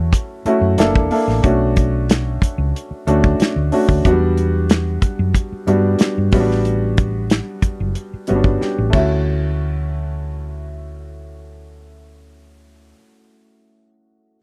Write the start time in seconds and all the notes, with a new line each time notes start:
Already playing: E2 A3 C#4 E4 F#4
0.13 kick, closed hi-hat
0.45 A3 C#4 E4 F#4, muted fingered electric bass stroke, closed hi-hat
0.61 F#2
0.78 F#1 A#3 D4 E4 A4, snare, closed hi-hat
0.96 E1, kick
1.11 A#3 D4 E4 A4, open hi-hat
1.28 A1, snare
1.43 B1 A3 C#4 D4 F#4, kick, closed hi-hat
1.76 kick, closed hi-hat
2.10 snare, closed hi-hat
2.42 muted fingered electric bass stroke, kick, closed hi-hat
2.58 C#2
2.76 closed hi-hat
2.91 muted fingered electric bass stroke
3.07 D2 A3 C#4 D4 F#4, closed hi-hat
3.24 kick
3.40 muted fingered electric bass stroke, snare, closed hi-hat
3.56 D2
3.72 A3 C#4 D4 F#4, open hi-hat
3.89 D2, kick
4.05 E2 F#3 B3 D4 F#4, kick, closed hi-hat
4.11 G3
4.37 closed hi-hat
4.70 snare, closed hi-hat
5.02 muted fingered electric bass stroke, kick, closed hi-hat
5.19 F#2
5.34 kick, closed hi-hat
5.52 muted fingered electric bass stroke
5.67 G2 G3 B3 D4 F#4, closed hi-hat
5.99 muted fingered electric bass stroke, snare, closed hi-hat
6.18 G2
6.32 A1 G3 B3 C#4 F#4, kick, open hi-hat
6.40 D4
6.51 snare
6.65 closed hi-hat
6.97 kick, closed hi-hat
7.30 snare, closed hi-hat
7.62 muted fingered electric bass stroke, kick, closed hi-hat
7.80 F#1
7.95 closed hi-hat
8.14 muted fingered electric bass stroke
8.27 G1 G3 B3 C#4 F#4, closed hi-hat
8.35 D4
8.44 kick
8.61 G4, muted fingered electric bass stroke, snare
8.78 A1
8.90 D2 A3 C#4, kick, crash
8.94 E4 F#4